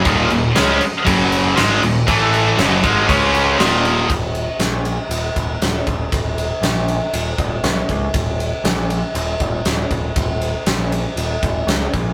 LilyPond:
<<
  \new Staff \with { instrumentName = "Distorted electric guitar" } { \clef bass \time 4/4 \key ees \minor \tempo 4 = 119 <ees, bes, ees>8 <ees, bes,>8 <des aes des'>8 r8 <ges, des ges>4 <aes, ees aes>8 <ees, bes,>8 | <a, e a>4 <ges, des ges>8 <aes, ees aes>8 <des aes des'>4 <ees, bes, ees>4 | r1 | r1 |
r1 | r1 | }
  \new Staff \with { instrumentName = "Picked electric bass" } { \clef bass \time 4/4 \key ees \minor ees,,8 ees,,8 des,8 r8 ges,,4 aes,,8 ees,,8 | a,,4 ges,,8 aes,,8 des,4 ees,,4 | ees,,4 bes,,4 ees,,8 ees,,8 ees,,8 ees,,8 | ees,,4 bes,,4 ees,,8 ees,,8 ces,8 des,8 |
ees,,4 bes,,4 ees,,8 ees,,8 ees,,8 ees,,8 | ees,,4 bes,,4 ees,,8 ees,,8 des,8 bes,,8 | }
  \new DrumStaff \with { instrumentName = "Drums" } \drummode { \time 4/4 <cymc bd>8 cymc8 <cymc sn>8 cymc8 <cymc bd>8 cymc8 <cymc sn>8 cymc8 | <cymc bd>8 cymc8 <cymc sn>8 <cymc bd>8 <cymc bd>8 cymc8 <cymc sn>8 cymc8 | <bd cymr>8 cymr8 <cymr sn>8 cymr8 cymr8 <bd cymr>8 <cymr sn>8 <bd cymr>8 | <bd cymr>8 cymr8 <cymr sn>8 cymr8 cymr8 <bd cymr>8 <cymr sn>8 <bd cymr>8 |
<bd cymr>8 cymr8 <cymr sn>8 cymr8 cymr8 <bd cymr>8 <cymr sn>8 <bd cymr>8 | <bd cymr>8 cymr8 <cymr sn>8 cymr8 cymr8 <bd cymr>8 <cymr sn>8 <bd cymr>8 | }
>>